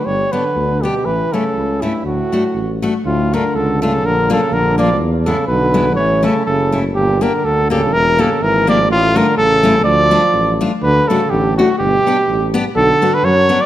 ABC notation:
X:1
M:2/4
L:1/16
Q:"Swing" 1/4=123
K:D
V:1 name="Trumpet"
c2 B4 G2 | B2 A4 E2 | F6 z2 | [K:Dm] F2 B2 A2 A2 |
B2 A2 B2 d2 | z2 A2 =B4 | ^c2 A2 A3 z | G2 B2 A2 A2 |
B2 A2 B2 d2 | F2 B2 A4 | d6 z2 | [K:D] B2 A2 G2 F2 |
G6 z2 | A3 B c3 d |]
V:2 name="Steel-string acoustic guitar"
z2 [B,DG]2 z2 [B,DG]2 | z2 [A,CE]2 z2 [A,CE]2 | z2 [A,DF]2 z2 [A,DF]2 | [K:Dm] z2 [A,DF]2 z2 [A,DF]2 |
z2 [B,DF]2 z2 [B,DF]2 | z2 [^G,=B,E]2 z2 [G,B,E]2 | z2 [A,^CE]2 z2 [A,CE]2 | z2 [B,DG]2 z2 [B,DG]2 |
z2 [B,EG]2 z2 [B,EG]2 | z2 [A,DF]2 z2 [A,^CE]2 | z2 [A,DF]2 z2 [A,DF]2 | [K:D] z2 [A,DF]2 z2 [A,DF]2 |
z2 [B,DG]2 z2 [B,DG]2 | z2 [B,DF]2 z2 [B,DF]2 |]
V:3 name="Euphonium" clef=bass
G,2 D,4 B,,2 | E,2 C,4 G,,2 | A,,6 z2 | [K:Dm] A,,2 D,2 D,2 ^C,2 |
D,2 ^C,2 D,2 F,2 | z2 ^C,2 D,4 | E,2 ^C,2 C,3 z | B,,2 D,2 D,2 ^C,2 |
E,2 ^C,2 E,2 F,2 | A,,2 D,2 ^C,4 | F,6 z2 | [K:D] D,2 C,2 D,2 A,,2 |
B,,6 z2 | D,3 D, F,3 F, |]
V:4 name="Tuba" clef=bass
G,,,2 z2 D,,4 | A,,,2 z2 C,,4 | D,,2 z2 A,,,4 | [K:Dm] D,,4 ^C,,4 |
B,,,4 B,,,4 | E,,4 =B,,,4 | A,,,4 ^F,,,4 | G,,,4 D,,4 |
E,,,4 ^G,,,4 | A,,,4 A,,,4 | D,,4 A,,,4 | [K:D] D,,2 z2 A,,,4 |
G,,,2 z2 A,,,4 | B,,,2 z2 F,,4 |]